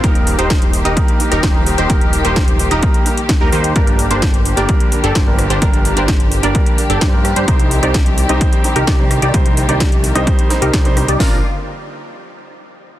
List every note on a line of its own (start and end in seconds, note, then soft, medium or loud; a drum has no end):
0.00 0.36 D#1 loud
0.00 3.72 D#3 medium
0.00 0.35 G3 medium
0.00 7.44 A#3 medium
0.00 0.36 A#3 medium
0.00 0.36 D#4 medium
0.00 0.36 G4 medium
0.00 3.72 G4 medium
0.00 0.36 A#4 loud
0.00 kick loud
0.00 closed hi-hat medium
0.04 0.36 A#4 medium
0.15 closed hi-hat soft
0.27 open hi-hat loud
0.38 0.83 D#1 medium
0.38 0.47 G3 medium
0.38 0.47 A#3 medium
0.38 0.82 D#4 medium
0.38 0.48 D#4 medium
0.38 0.82 G4 medium
0.38 0.48 A#4 medium
0.38 0.82 C5 medium
0.38 closed hi-hat medium
0.50 kick loud
0.50 snare loud
0.50 closed hi-hat medium
0.62 closed hi-hat soft
0.73 open hi-hat medium
0.84 1.00 D#1 medium
0.84 1.17 G3 medium
0.84 1.17 A#3 medium
0.84 1.02 D#4 medium
0.84 1.17 D#4 medium
0.84 1.02 G4 medium
0.84 1.17 A#4 loud
0.84 1.02 D#5 medium
0.84 closed hi-hat soft
0.97 kick loud
0.97 closed hi-hat medium
1.08 closed hi-hat soft
1.19 1.29 G3 medium
1.19 1.29 A#3 medium
1.19 1.29 D#4 medium
1.19 1.29 A#4 medium
1.19 open hi-hat loud
1.32 1.41 D#1 medium
1.32 1.41 D#4 loud
1.32 1.41 G4 medium
1.32 1.41 A#4 loud
1.32 closed hi-hat soft
1.43 1.76 D#1 loud
1.43 1.75 D#4 medium
1.43 1.75 G4 medium
1.43 kick loud
1.43 snare loud
1.43 closed hi-hat medium
1.54 1.87 G3 medium
1.54 1.87 A#3 medium
1.54 1.87 D#4 medium
1.54 1.87 A#4 medium
1.66 open hi-hat medium
1.78 1.87 D#1 loud
1.78 1.87 D#4 medium
1.78 1.87 G4 medium
1.78 1.87 C5 medium
1.78 closed hi-hat medium
1.89 2.22 D#1 loud
1.89 2.22 G3 medium
1.89 2.22 A#3 medium
1.89 2.22 D#4 medium
1.89 2.22 G4 medium
1.89 2.22 A#4 loud
1.89 2.22 A#4 medium
1.89 kick loud
1.89 closed hi-hat medium
2.01 closed hi-hat soft
2.13 open hi-hat loud
2.24 2.69 D#1 loud
2.24 2.33 G3 medium
2.24 2.33 A#3 medium
2.24 2.68 D#4 medium
2.24 2.34 D#4 medium
2.24 2.68 G4 medium
2.24 2.34 A#4 medium
2.24 2.68 C5 medium
2.24 closed hi-hat soft
2.36 kick loud
2.36 snare loud
2.36 closed hi-hat medium
2.48 closed hi-hat soft
2.59 open hi-hat loud
2.70 2.86 D#1 loud
2.70 3.03 G3 medium
2.70 3.03 A#3 medium
2.70 2.88 D#4 medium
2.70 3.03 D#4 medium
2.70 2.88 G4 medium
2.70 3.03 A#4 loud
2.70 2.88 D#5 medium
2.70 closed hi-hat soft
2.83 kick loud
2.83 closed hi-hat medium
2.94 closed hi-hat soft
3.05 3.15 G3 medium
3.05 3.15 A#3 medium
3.05 3.15 D#4 medium
3.05 3.15 A#4 medium
3.05 open hi-hat loud
3.17 closed hi-hat soft
3.29 kick loud
3.29 snare loud
3.29 closed hi-hat medium
3.40 3.50 D#1 medium
3.40 3.73 G3 medium
3.40 3.73 A#3 medium
3.40 3.50 D#4 medium
3.40 3.73 D#4 medium
3.40 3.50 G4 medium
3.40 3.50 A#4 medium
3.40 3.73 A#4 medium
3.52 3.73 D#2 loud
3.52 3.73 D#4 medium
3.52 3.73 G4 medium
3.52 3.73 C5 medium
3.52 open hi-hat medium
3.64 closed hi-hat soft
3.75 4.08 G1 medium
3.75 7.44 D3 medium
3.75 4.07 G3 medium
3.75 4.08 A#3 medium
3.75 4.08 D4 medium
3.75 4.08 G4 medium
3.75 11.16 G4 medium
3.75 4.08 A#4 loud
3.75 4.08 A#4 medium
3.75 kick loud
3.75 closed hi-hat medium
3.87 closed hi-hat soft
3.99 open hi-hat loud
4.10 4.55 G1 loud
4.10 4.19 G3 medium
4.10 4.19 A#3 medium
4.10 4.20 D4 medium
4.10 4.54 D4 medium
4.10 4.54 G4 medium
4.10 4.20 A#4 medium
4.10 4.54 C5 medium
4.10 closed hi-hat soft
4.22 kick loud
4.22 snare loud
4.22 closed hi-hat medium
4.34 closed hi-hat soft
4.45 open hi-hat medium
4.56 4.72 G1 medium
4.56 4.89 G3 loud
4.56 4.89 A#3 medium
4.56 4.74 D4 medium
4.56 4.89 D4 medium
4.56 4.74 G4 medium
4.56 4.89 A#4 loud
4.56 4.74 D5 medium
4.56 closed hi-hat soft
4.69 kick loud
4.69 closed hi-hat medium
4.80 closed hi-hat soft
4.91 5.01 G3 medium
4.91 5.01 A#3 medium
4.91 5.01 D4 medium
4.91 5.01 A#4 medium
4.91 open hi-hat loud
5.04 5.13 G1 loud
5.04 5.14 D4 loud
5.04 5.14 G4 medium
5.04 5.14 A4 loud
5.04 closed hi-hat soft
5.15 5.48 G1 loud
5.15 5.47 D4 medium
5.15 5.47 G4 medium
5.15 5.47 C5 medium
5.15 kick loud
5.15 snare loud
5.15 closed hi-hat medium
5.26 5.59 G3 medium
5.26 5.59 A#3 medium
5.26 5.59 D4 medium
5.26 5.59 A#4 medium
5.39 cross-stick medium
5.39 open hi-hat medium
5.50 5.59 G1 medium
5.50 5.59 D4 medium
5.50 5.59 G4 medium
5.50 5.59 C5 medium
5.50 closed hi-hat soft
5.61 5.94 G1 loud
5.61 5.94 G3 medium
5.61 5.94 A#3 medium
5.61 5.94 D4 medium
5.61 5.94 G4 medium
5.61 5.94 A#4 loud
5.61 5.94 A#4 medium
5.61 kick loud
5.61 closed hi-hat medium
5.74 closed hi-hat soft
5.85 open hi-hat loud
5.96 6.41 G1 loud
5.96 6.05 G3 medium
5.96 6.06 A#3 medium
5.96 6.40 D4 medium
5.96 6.06 D4 medium
5.96 6.40 G4 medium
5.96 6.06 A#4 medium
5.96 6.40 C5 medium
5.96 closed hi-hat medium
6.08 kick loud
6.08 snare loud
6.08 closed hi-hat medium
6.20 closed hi-hat soft
6.32 open hi-hat medium
6.43 6.58 G1 loud
6.43 6.75 G3 loud
6.43 6.75 A#3 medium
6.43 6.60 D4 medium
6.43 6.75 D4 medium
6.43 6.60 G4 medium
6.43 6.76 A#4 loud
6.43 6.60 D5 medium
6.43 closed hi-hat medium
6.55 kick loud
6.55 closed hi-hat medium
6.66 closed hi-hat soft
6.77 6.87 G3 medium
6.77 6.87 A#3 medium
6.77 6.87 D4 medium
6.77 6.87 A#4 medium
6.77 open hi-hat loud
6.90 6.99 G1 medium
6.90 7.00 D4 loud
6.90 7.00 G4 medium
6.90 7.00 A4 loud
6.90 closed hi-hat medium
7.01 7.34 G2 loud
7.01 7.33 D4 medium
7.01 7.33 G4 medium
7.01 7.33 C5 medium
7.01 kick loud
7.01 snare loud
7.01 closed hi-hat medium
7.12 7.45 G3 medium
7.12 7.45 A#3 medium
7.12 7.45 D4 medium
7.12 7.45 A#4 medium
7.25 cross-stick medium
7.25 open hi-hat medium
7.36 7.46 G2 loud
7.36 7.45 D4 medium
7.36 7.45 G4 medium
7.36 7.45 C5 medium
7.36 closed hi-hat medium
7.47 7.80 C2 loud
7.47 11.16 D#3 medium
7.47 7.80 G3 medium
7.47 7.80 C4 medium
7.47 9.32 C4 medium
7.47 7.80 D#4 medium
7.47 7.80 G4 medium
7.47 7.80 C5 loud
7.47 7.80 C5 medium
7.47 kick loud
7.47 closed hi-hat medium
7.59 closed hi-hat soft
7.71 open hi-hat loud
7.82 8.27 C2 loud
7.82 7.91 G3 medium
7.82 7.92 C4 medium
7.82 8.27 D#4 medium
7.82 7.92 D#4 medium
7.82 8.27 G4 medium
7.82 7.92 C5 medium
7.82 8.27 D5 medium
7.82 closed hi-hat medium
7.94 kick loud
7.94 snare loud
7.94 closed hi-hat medium
8.06 closed hi-hat soft
8.18 open hi-hat medium
8.29 8.44 C2 loud
8.29 8.61 G3 loud
8.29 8.61 C4 medium
8.29 8.46 D#4 medium
8.29 8.62 D#4 medium
8.29 8.46 G4 medium
8.29 8.62 C5 loud
8.29 8.46 D#5 medium
8.29 closed hi-hat medium
8.41 kick loud
8.41 closed hi-hat medium
8.53 closed hi-hat soft
8.64 8.73 G3 medium
8.64 8.73 C4 medium
8.64 8.73 D#4 medium
8.64 8.73 C5 medium
8.64 open hi-hat loud
8.76 8.85 C2 medium
8.76 8.86 D#4 loud
8.76 8.86 G4 medium
8.76 8.86 A#4 loud
8.76 closed hi-hat medium
8.87 9.20 C2 loud
8.87 9.20 D#4 medium
8.87 9.20 G4 medium
8.87 9.20 D5 medium
8.87 kick loud
8.87 snare loud
8.87 closed hi-hat medium
8.98 9.31 G3 medium
8.98 9.31 C4 medium
8.98 9.31 D#4 medium
8.98 9.31 C5 medium
9.11 cross-stick medium
9.11 open hi-hat medium
9.22 9.32 C2 loud
9.22 9.31 D#4 medium
9.22 9.31 G4 medium
9.22 9.31 D5 medium
9.22 closed hi-hat medium
9.33 9.67 C2 loud
9.33 9.66 G3 medium
9.33 11.18 A#3 medium
9.33 9.66 C4 medium
9.33 9.66 D#4 loud
9.33 9.66 D#4 medium
9.33 9.66 G4 medium
9.33 9.66 C5 loud
9.33 9.66 C5 medium
9.33 kick loud
9.33 closed hi-hat medium
9.46 closed hi-hat soft
9.57 open hi-hat loud
9.68 10.13 C2 loud
9.68 9.77 G3 medium
9.68 9.78 C4 medium
9.68 10.13 D#4 medium
9.68 9.78 D#4 medium
9.68 10.13 G4 medium
9.68 9.78 C5 medium
9.68 10.13 D5 medium
9.68 closed hi-hat medium
9.80 kick loud
9.80 snare loud
9.80 closed hi-hat medium
9.92 closed hi-hat soft
10.04 open hi-hat medium
10.15 10.30 C2 loud
10.15 10.47 G3 medium
10.15 10.47 C4 medium
10.15 10.32 D#4 medium
10.15 10.47 D#4 medium
10.15 10.32 G4 medium
10.15 10.48 C5 loud
10.15 10.32 D#5 medium
10.15 cross-stick medium
10.15 closed hi-hat medium
10.27 kick loud
10.27 closed hi-hat medium
10.39 closed hi-hat soft
10.50 10.82 G3 medium
10.50 10.82 C4 medium
10.50 10.82 D#4 medium
10.50 10.83 C5 loud
10.50 snare soft
10.50 open hi-hat loud
10.62 10.71 C2 loud
10.62 10.72 D#4 loud
10.62 10.72 G4 medium
10.62 10.72 A#4 loud
10.62 closed hi-hat medium
10.73 11.06 C2 loud
10.73 11.06 G4 medium
10.73 11.06 D5 medium
10.73 kick loud
10.73 snare loud
10.73 closed hi-hat medium
10.85 10.94 G3 medium
10.85 10.94 C4 medium
10.85 10.94 D#4 medium
10.85 10.94 C5 loud
10.85 closed hi-hat soft
10.96 11.05 G3 medium
10.96 11.06 C4 medium
10.96 11.06 D#4 medium
10.96 11.06 C5 medium
10.96 cross-stick medium
10.96 open hi-hat medium
11.08 11.18 C2 loud
11.08 11.17 D#4 medium
11.08 11.17 G4 medium
11.08 11.17 D5 medium
11.08 closed hi-hat medium
11.18 11.42 A#1 loud
11.18 11.42 D3 medium
11.18 11.36 F3 medium
11.18 11.37 A#3 medium
11.18 11.42 A#3 medium
11.18 11.38 D4 medium
11.18 11.37 F4 medium
11.18 11.42 F4 medium
11.18 11.37 A#4 medium
11.18 11.38 A#4 medium
11.18 11.37 D5 medium
11.18 kick loud
11.18 snare loud
11.18 open hi-hat medium